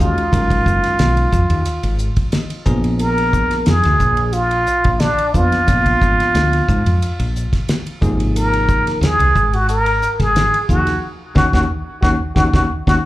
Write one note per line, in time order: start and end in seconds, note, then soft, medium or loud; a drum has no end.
0.00 0.13 D#2 medium
0.00 0.23 D#3 medium
0.00 0.23 G#3 medium
0.00 0.23 C#4 medium
0.00 2.00 F4 medium
0.00 0.23 F#4 medium
0.00 0.23 G#4 medium
0.00 hi-hat pedal medium
0.18 ride medium
0.32 0.58 G#1 medium
0.32 1.28 D#3 medium
0.32 1.28 F#3 medium
0.32 1.28 G#3 medium
0.32 1.28 C#4 medium
0.32 1.29 A#4 medium
0.32 kick medium
0.32 hi-hat pedal medium
0.32 ride medium
0.50 kick medium
0.50 ride medium
0.66 0.79 F#1 medium
0.66 kick medium
0.66 hi-hat pedal medium
0.84 snare soft
0.84 ride medium
0.99 1.25 B1 medium
0.99 snare medium
0.99 hi-hat pedal medium
0.99 ride medium
1.17 ride medium
1.32 1.46 F2 medium
1.32 kick medium
1.32 hi-hat pedal medium
1.50 1.62 D#2 medium
1.50 ride medium
1.65 hi-hat pedal medium
1.65 ride medium
1.83 2.09 G#1 medium
1.83 ride medium
1.99 hi-hat pedal medium
2.16 kick medium
2.16 ride medium
2.32 2.64 D#5 medium
2.32 snare medium
2.32 hi-hat pedal medium
2.32 ride medium
2.50 ride medium
2.66 3.43 A#1 medium
2.66 3.74 F3 medium
2.66 3.74 A#3 medium
2.66 3.73 B3 medium
2.66 3.74 D4 medium
2.66 3.74 G#4 medium
2.66 2.97 A#5 medium
2.66 kick medium
2.66 hi-hat pedal medium
2.84 ride soft
2.99 3.69 A#4 loud
2.99 hi-hat pedal medium
2.99 ride medium
3.18 ride medium
3.33 kick medium
3.33 hi-hat pedal medium
3.51 snare soft
3.51 ride medium
3.66 3.81 F2 medium
3.66 4.35 G#4 medium
3.66 snare medium
3.66 hi-hat pedal medium
3.66 ride medium
3.83 3.97 D2 medium
3.83 snare soft
3.83 ride soft
4.00 4.65 A#1 medium
4.00 kick medium
4.00 hi-hat pedal medium
4.17 ride medium
4.33 5.02 F4 medium
4.33 hi-hat pedal medium
4.33 ride medium
4.51 ride medium
4.66 hi-hat pedal medium
4.84 5.11 A#1 medium
4.84 kick medium
4.84 ride medium
5.00 5.35 D4 medium
5.00 snare medium
5.00 hi-hat pedal medium
5.00 ride medium
5.18 ride medium
5.34 5.48 F2 medium
5.34 5.58 F3 medium
5.34 5.59 A#3 medium
5.34 5.59 B3 medium
5.34 5.59 D4 medium
5.34 7.35 F4 medium
5.34 5.59 B4 medium
5.34 kick medium
5.34 hi-hat pedal medium
5.52 snare soft
5.52 ride medium
5.67 5.94 A#1 medium
5.67 6.63 F3 medium
5.67 6.63 A#3 medium
5.67 6.63 B3 medium
5.67 6.63 D4 medium
5.67 6.64 F4 medium
5.67 kick medium
5.67 hi-hat pedal medium
5.67 ride medium
5.86 kick medium
5.86 ride medium
6.01 6.15 G#1 medium
6.01 kick medium
6.01 hi-hat pedal medium
6.20 snare soft
6.20 ride medium
6.35 6.60 D2 medium
6.35 snare loud
6.35 hi-hat pedal medium
6.35 ride medium
6.53 ride medium
6.69 6.82 G#2 medium
6.69 kick medium
6.69 hi-hat pedal medium
6.86 6.98 F2 medium
6.86 ride medium
7.02 hi-hat pedal medium
7.02 ride medium
7.19 7.45 A#1 medium
7.19 ride medium
7.36 hi-hat pedal medium
7.53 kick medium
7.53 snare soft
7.53 ride medium
7.69 snare medium
7.69 hi-hat pedal medium
7.69 ride medium
7.86 ride medium
8.01 8.79 G#1 medium
8.01 9.09 C3 medium
8.01 9.09 F3 medium
8.01 9.09 A#3 medium
8.01 9.09 D#4 medium
8.01 9.09 G#4 medium
8.01 kick medium
8.01 hi-hat pedal medium
8.20 ride medium
8.36 8.99 A#4 medium
8.36 hi-hat pedal medium
8.36 ride medium
8.53 ride medium
8.68 kick medium
8.68 hi-hat pedal medium
8.87 snare soft
8.87 ride medium
9.01 9.15 D#2 medium
9.01 9.56 G#4 medium
9.01 snare loud
9.01 hi-hat pedal medium
9.01 ride medium
9.19 9.31 C2 medium
9.19 ride medium
9.36 10.00 G#1 medium
9.36 kick medium
9.36 hi-hat pedal medium
9.53 9.69 F#4 medium
9.53 ride medium
9.69 10.22 A#4 loud
9.69 hi-hat pedal medium
9.69 ride medium
9.86 ride medium
10.02 hi-hat pedal medium
10.20 10.46 G#1 medium
10.20 10.68 G#4 medium
10.20 kick medium
10.20 snare soft
10.20 ride medium
10.36 snare medium
10.36 hi-hat pedal medium
10.36 ride medium
10.54 ride medium
10.69 10.83 D#2 medium
10.69 10.94 C3 medium
10.69 10.94 F3 medium
10.69 10.94 A#3 medium
10.69 10.94 D#4 medium
10.69 11.00 F#4 medium
10.69 10.94 G#4 medium
10.69 kick medium
10.69 hi-hat pedal medium
10.87 snare soft
10.87 ride medium
11.35 11.49 D#2 medium
11.35 11.46 A#3 medium
11.35 11.47 C#4 medium
11.35 11.47 D#4 medium
11.35 11.45 F#4 medium
11.35 kick medium
11.35 snare medium
11.53 11.65 D#2 medium
11.53 11.64 A#3 medium
11.53 11.64 C#4 medium
11.53 11.64 D#4 medium
11.53 11.60 F#4 medium
11.53 kick medium
11.53 snare medium
12.01 12.16 D#2 medium
12.01 12.14 A#3 medium
12.01 12.14 C#4 medium
12.01 12.14 D#4 medium
12.01 12.10 F#4 medium
12.01 kick medium
12.01 snare medium
12.35 12.49 D#2 medium
12.35 12.48 A#3 medium
12.35 12.48 C#4 medium
12.35 12.48 D#4 medium
12.35 12.44 F#4 medium
12.35 kick medium
12.35 snare medium
12.54 12.65 D#2 medium
12.54 12.64 A#3 medium
12.54 12.64 C#4 medium
12.54 12.64 D#4 medium
12.54 12.62 F#4 medium
12.54 kick medium
12.54 snare medium
12.87 12.99 D#2 medium
12.87 12.97 A#3 medium
12.87 12.97 C#4 medium
12.87 12.97 D#4 medium
12.87 12.95 F#4 medium
12.87 kick medium
12.87 snare medium